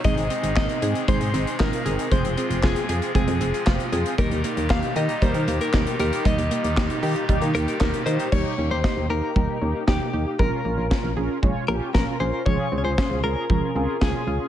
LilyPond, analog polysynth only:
\new Staff \with { instrumentName = "Analog polysynth" } { \time 4/4 \key ees \mixolydian \tempo 4 = 116 <c' ees' aes'>8 <c' ees' aes'>8 <c' ees' bes'>8 <c' ees' aes'>8 <c' ees' aes'>8 <c' ees' aes'>8 <c' ees' f'>8 <c' ees' aes'>8 | <c' f' aes'>8 <c' f' aes'>8 <c' f' aes'>8 <c' f' aes'>8 <c' f' aes'>8 <c' f' aes'>8 <c' f' g'>8 <c' f' aes'>8 | <bes ees' g'>8 <bes ees' g'>8 <bes ees' g'>8 <bes ees' g'>8 <bes ees' bes'>8 <bes ees' g'>8 g'8 <bes ees' g'>8~ | <bes ees' g'>8 <bes ees' g'>8 <bes ees' g'>8 <bes ees' g'>8 <bes ees' g'>8 <bes ees'>8 <bes g'>8 <bes ees' g'>8 |
<bes ees' g'>8 <bes ees' g'>8 <bes ees' g'>8 <bes ees' g'>8 <bes ees' g'>8 <bes ees' g'>8 <bes ees' g'>8 <bes ees' g'>8 | <des' f' bes'>8 <des' f' bes'>8 <des' f' bes'>8 <des' f' bes'>8 <des' f' des''>8 <des' f' g'>8 <des' f' bes'>8 <des' f' bes'>8 | <des' f' aes'>8 <des' f' aes'>8 <des' f' aes'>8 <des' f' aes'>8 <des' f' aes'>8 <des' f' aes'>8 <des' f' aes'>8 <des' f' aes'>8 | }